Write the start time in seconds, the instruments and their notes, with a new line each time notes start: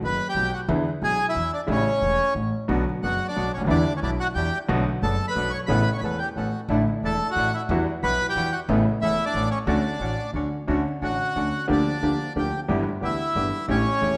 0.02 upright bass F#1, grand piano F#1 F#2, bandoneon B4
0.07 bandoneon B5
0.29 bandoneon G4 G5
0.35 upright bass B1, grand piano B1 B2
0.53 bandoneon F#4 F#5
0.68 upright bass E2, grand piano E2 D3 E3 G#3 B3 E4
1.02 upright bass B1, grand piano B1 B2, bandoneon G#4 G#5
1.28 bandoneon E4 E5
1.35 grand piano E2 E3, upright bass E2
1.53 bandoneon D4 D5
1.67 upright bass A1, grand piano A1 A2 C#3 G3 A3 E4
1.71 bandoneon C#4 C#5
2.02 upright bass E1, grand piano E1 E2
2.35 upright bass A1, grand piano A1 A2
2.68 grand piano B1 B2 D3 F#3 B3 F#4, upright bass B1, bandoneon B3 D4 F#4
3.03 grand piano F#1 F#2, upright bass F#1, bandoneon B3 D4 F#4 F#5
3.28 bandoneon D4 D5
3.36 grand piano B1 B2, upright bass B1, bandoneon B3 D4 F#4
3.54 grand piano C#2, bandoneon C#4 C#5
3.58 upright bass C#2, grand piano D2
3.62 upright bass D2, grand piano D#2
3.66 upright bass D#2 E2, grand piano E2 D3 E3 G3 B3 E4, bandoneon D4 E4 D5
3.71 bandoneon D4 G4
3.97 bandoneon C#4 C#5
4.02 upright bass B1, grand piano B1 B2, bandoneon D4 E4 G4 D5
4.20 bandoneon F#4 F#5
4.35 upright bass E2, grand piano E2 E3, bandoneon D4 E4 G4 G5
4.69 grand piano B1 B2 D3 A3 B3 F#4, upright bass B1, bandoneon B3 D4 A4
5.02 grand piano F#1 F#2, upright bass F#1, bandoneon B3 D4 A4 A5
5.28 bandoneon B4 B5
5.36 upright bass B1, grand piano B1 B2, bandoneon B3 D4 A4
5.50 bandoneon C#5 C#6
5.67 upright bass A1, grand piano A1 A2 C#3 A3 B3 E4, bandoneon B3 C#4 A4 B4 B5
5.93 bandoneon C#6
5.97 bandoneon C#5 B5
6.02 upright bass E1, grand piano E1 E2, bandoneon B3 C#4 A4 B4
6.19 bandoneon G4 G5
6.35 grand piano A1 A2, upright bass A1, bandoneon B3 C#4 F#4 A4 F#5
6.69 upright bass A1, grand piano A1 A2 D3 E3 A3 E4, bandoneon D4 E4 A4
7.03 upright bass E1, grand piano E1 E2, bandoneon D4 E4 A4 A5
7.30 bandoneon F#4 F#5
7.36 upright bass A1, grand piano A1 A2, bandoneon D4 E4 A4
7.54 bandoneon E4 E5
7.69 upright bass E2, grand piano E2 E3 G3 B3 F#4, bandoneon G3 E4 F#4
8.02 upright bass B1, grand piano B1 B2, bandoneon G3 E4 F#4 B4 B5
8.29 bandoneon G4 G5
8.35 upright bass E2, grand piano E2 E3, bandoneon G3 E4 F#4
8.53 bandoneon F#4 F#5
8.69 upright bass A1, grand piano A1 A2 C#3 A3 B3 E4, bandoneon B3 C#4 A4
9.01 upright bass E1, grand piano E1 E2, bandoneon B3 C#4 E4 A4 E5
9.25 bandoneon D4 D5
9.34 upright bass A1, grand piano A1 A2, bandoneon B3 C#4 A4
9.51 bandoneon C#4 C#5
9.67 upright bass D2, grand piano D2 D3 A3 C#4 F#4, bandoneon C#4 D4 F#4 D5
9.99 grand piano A1 A2, upright bass A1, bandoneon C#4 D4 F#4
10.34 upright bass D2, grand piano D2 D3, bandoneon C#4 D4 F#4
10.68 grand piano D2 D3 A3 C#4 F#4, upright bass D2, bandoneon C#4 D4 F#4
11.01 upright bass A1, grand piano A1 A2 D3 A3 C#4 F#4, bandoneon C#4 D4 F#4
11.05 bandoneon F#5
11.35 grand piano D2 D3 A3 C#4 F#4, upright bass D2, bandoneon C#4 D4 F#4
11.67 grand piano D2 D3 F3 A#3 D4 G4, upright bass D2, bandoneon A#3 D4 G4
11.72 bandoneon D4 D5
12.02 upright bass D2, grand piano D2 D3 F3 A#3 D4 G4, bandoneon A#3 D4 G4
12.35 upright bass D2, grand piano D2 D3 F3 A#3 D4 G4, bandoneon A#3 D4 G4 G5
12.68 grand piano G1 G2 E3 B3 D4 G4, upright bass G1, bandoneon B3 E4 G4
13.01 grand piano D2 D3 E3 B3 D4 G4, upright bass D2, bandoneon B3 E4 G4 E5
13.35 upright bass G1, grand piano G1 G2 E3 B3 D4 G4, bandoneon B3 E4 G4
13.68 upright bass A1, grand piano A1 A2 E3 A3 C#4 G4, bandoneon A3 C#4 G4 C#5
14.01 upright bass E1, grand piano E1 E2 E3 A3 C#4 G4, bandoneon A3 C#4 G4